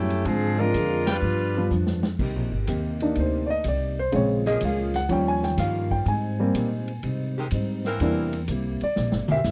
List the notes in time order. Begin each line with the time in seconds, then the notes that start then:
Already playing: F#2 A2 G3 A3 C#4 E4 G4
0.10 ride
0.25 G#2 D3 F3 G#3 C4 D4 F4 G#4, ride
0.59 F3 G#3 C4 D4 F4 A#4
0.74 F2 D3 G#3 C4 F4, hi-hat pedal, ride
1.07 G3 D4 F4 B4 D5 G5, snare, ride
1.22 G2 F3 B3 D4
1.57 F3 G3 B3 D4 F4
1.70 F2 G2 F3 B3 D4, hi-hat pedal
1.87 snare
2.03 snare
2.19 C2 C3 D#3 A#3 C4 D#4 G4, kick, crash
2.35 A#1
2.52 G1
2.67 D#2 C3 D#3 A#3 C4 D#4 G4, hi-hat pedal, ride
3.00 A#3 D4 D#4, ride
3.15 D2 C3 A#3 D#4 G4, ride
3.20 C5
3.47 D5 D#5
3.64 C2 C3 A#3 D#4 G4, hi-hat pedal, ride
3.68 D5
3.99 C5
4.12 A#1 A#2 C#3 G#3 C4 C#4 F4 C#5, ride
4.45 F3 A#3 C#4 G#4 D#5, snare
4.61 C#2 A#2 G#3 C#4 F4, hi-hat pedal, ride
4.65 F5
4.94 F#5, snare, ride
5.09 D#2 D#3 F3 G3 A#3 C#4 G4 G5, ride
5.28 G#5
5.43 G5, snare
5.57 G2 D#3 A#3 C#4 F4 G4 F5, snare, hi-hat pedal, ride
5.91 G5, kick
6.06 G#2 G3 C4 D#4 G#5, ride
6.40 G3 A#3 C4
6.54 G#2 A#2 G3 C4 D#4, hi-hat pedal, ride
6.88 ride
7.03 G#2 C3 G3 C4 D#4, ride
7.37 D#3 G#3 C4 G4
7.51 G#2 G3 C4 D#4, hi-hat pedal, ride
7.85 E3 A#3 C4 A#4, snare
8.00 E2 C3 E3 G3 A#3 D4 E4, ride
8.33 ride
8.48 C2 C3 G3 A#3 E4, hi-hat pedal, ride
8.81 D5, muted upright bass stroke, ride
8.96 A#1 C3 G3 A#3 E4, snare
9.12 G1, snare
9.28 E1 E3 A#3 C4 G4 E5, mid tom
9.44 G1 C3 G3 A#3 E4, snare, hi-hat pedal